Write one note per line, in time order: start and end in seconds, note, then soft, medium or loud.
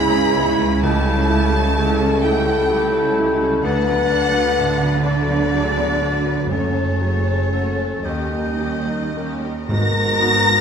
0.00 0.79 C#2 medium
0.00 3.61 C#2 medium
0.00 0.85 G#2 medium
0.00 3.60 C#3 medium
0.00 0.65 G#3 medium
0.00 0.12 B3 medium
0.00 0.11 E4 medium
0.00 0.37 E4 medium
0.00 0.80 E4 medium
0.00 0.81 G#4 medium
0.00 0.11 C#5 medium
0.00 0.83 B5 loud
0.00 0.81 G#6 medium
0.13 0.37 G#3 medium
0.13 0.37 C#4 medium
0.13 0.37 B4 medium
0.36 0.60 B3 medium
0.36 0.60 E4 medium
0.36 0.83 E4 medium
0.36 0.60 C#5 medium
0.59 0.84 G#3 medium
0.59 0.84 C#4 medium
0.59 0.83 B4 medium
0.83 3.61 C#2 medium
0.83 1.06 A3 medium
0.83 1.93 E4 medium
0.83 1.05 E4 medium
0.83 1.05 G4 medium
0.83 3.61 A4 loud
0.83 2.20 A5 loud
0.83 1.94 G6 medium
1.06 1.30 G3 medium
1.06 1.30 C#4 medium
1.06 1.30 A4 medium
1.29 1.53 A3 medium
1.29 1.53 E4 medium
1.29 2.04 E4 medium
1.29 1.53 G4 medium
1.53 1.76 G3 medium
1.53 1.76 C#4 medium
1.53 1.76 A4 medium
1.76 2.51 C#3 medium
1.76 1.98 A3 medium
1.76 1.98 E4 medium
1.76 1.98 G4 medium
1.99 2.23 G3 medium
1.99 2.23 C#4 medium
1.99 2.24 A4 medium
2.22 2.47 A3 medium
2.22 2.46 E4 medium
2.22 2.98 E4 medium
2.22 3.68 E4 medium
2.22 2.47 G4 medium
2.22 3.17 G5 loud
2.22 3.61 G6 medium
2.45 2.70 G3 medium
2.45 2.70 C#4 medium
2.45 2.70 A4 medium
2.69 3.45 G3 medium
2.69 2.91 A3 medium
2.69 2.91 E4 medium
2.69 2.92 G4 medium
2.92 3.16 G3 medium
2.92 3.17 C#4 medium
2.92 3.17 A4 medium
3.17 3.41 A3 medium
3.17 3.41 E4 medium
3.17 3.65 E4 soft
3.17 3.41 G4 medium
3.40 3.64 G3 medium
3.40 3.64 C#4 medium
3.40 3.63 A4 medium
3.63 6.46 D2 medium
3.63 6.47 D3 medium
3.63 3.85 A3 medium
3.63 3.85 D4 medium
3.63 5.06 D4 medium
3.63 3.86 A4 medium
3.63 4.89 B4 loud
3.63 5.01 F#5 loud
3.63 5.03 A6 medium
3.87 4.11 F#3 medium
3.87 4.11 B3 medium
3.87 4.12 B4 medium
4.10 4.34 A3 medium
4.10 4.34 D4 medium
4.10 4.87 D4 medium
4.10 4.35 A4 medium
4.34 4.58 F#3 medium
4.34 4.58 B3 medium
4.34 4.58 B4 medium
4.57 5.34 A2 medium
4.57 4.80 A3 medium
4.57 4.80 D4 medium
4.57 4.80 A4 medium
4.81 5.05 F#3 medium
4.81 5.05 B3 medium
4.81 5.05 B4 medium
5.05 5.29 A3 medium
5.05 5.29 D4 medium
5.05 5.82 D4 medium
5.05 6.48 D4 medium
5.05 5.52 A4 medium
5.05 5.30 A4 medium
5.05 6.50 D5 loud
5.05 6.48 A6 medium
5.28 5.53 F#3 medium
5.28 5.53 B3 medium
5.28 5.53 B4 medium
5.52 6.31 F#3 medium
5.52 5.75 A3 medium
5.52 5.75 D4 medium
5.52 6.02 G#4 medium
5.52 5.75 A4 medium
5.76 6.01 F#3 medium
5.76 6.01 B3 medium
5.76 6.01 B4 medium
6.00 6.25 A3 medium
6.00 6.25 D4 medium
6.00 6.51 D4 soft
6.00 6.51 F#4 medium
6.00 6.26 A4 medium
6.25 6.50 F#3 medium
6.25 6.50 B3 soft
6.25 6.50 B4 medium
6.48 8.05 F#1 medium
6.48 8.06 F#2 medium
6.48 8.02 F#2 medium
6.48 6.73 A3 medium
6.48 6.72 C#4 medium
6.48 8.02 C#4 medium
6.48 6.73 F#4 medium
6.48 7.01 A4 medium
6.48 8.02 C#5 medium
6.48 8.07 A6 medium
6.74 7.00 F#3 soft
6.74 6.98 A3 soft
6.74 7.00 A4 medium
6.99 7.84 F#3 medium
6.99 7.23 A3 soft
6.99 7.25 C#4 soft
6.99 7.26 F#4 medium
6.99 7.53 G#4 medium
7.24 7.51 F#3 soft
7.24 7.49 A3 soft
7.24 7.52 A4 soft
7.50 7.75 A3 soft
7.50 7.76 C#4 soft
7.50 8.02 C#4 soft
7.50 7.76 F#4 soft
7.50 8.02 A4 soft
7.50 8.05 A4 medium
7.76 8.04 F#3 soft
7.76 8.04 A3 soft
7.76 8.05 A4 soft
8.03 9.45 D#2 medium
8.03 9.66 D#2 medium
8.03 8.30 A#3 soft
8.03 8.29 C#4 soft
8.03 9.32 C#4 medium
8.03 8.31 G4 soft
8.03 8.88 G4 soft
8.03 9.70 D#5 medium
8.03 9.35 G6 medium
8.31 8.60 G3 soft
8.31 8.59 D#4 soft
8.31 8.60 A#4 soft
8.59 9.49 G3 soft
8.59 8.88 A#3 soft
8.59 8.87 C#4 medium
8.59 8.88 G4 soft
8.87 9.16 G3 soft
8.87 9.16 D#4 soft
8.87 9.16 A#4 soft
9.16 9.42 A#3 soft
9.16 9.42 C#4 soft
9.16 9.66 C#4 soft
9.16 9.42 G4 soft
9.16 9.66 A#4 soft
9.44 9.70 G3 soft
9.44 9.70 D#4 soft
9.44 9.70 A#4 soft
9.69 10.61 G#1 medium
9.69 10.61 G#2 loud
9.69 10.61 G#2 medium
9.69 10.18 G#2 medium
9.69 10.61 B3 medium
9.69 10.61 F#4 medium
9.69 10.61 A#4 loud
9.69 10.61 A#5 loud
9.69 10.61 A#6 loud
10.20 10.61 B3 medium
10.20 10.61 D#4 soft
10.20 10.61 F#4 medium